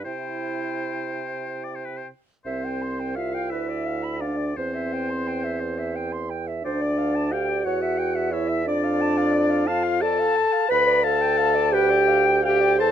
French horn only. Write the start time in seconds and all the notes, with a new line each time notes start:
0.03 E4
2.46 C4
3.16 F4
3.52 E4
4.21 D4
4.57 C4
6.63 D4
7.32 G4
7.65 F#4
8.31 E4
8.67 D4
9.67 F4
10.02 A4
10.68 B4
11.04 A4
11.73 G4
12.45 G4
12.80 A4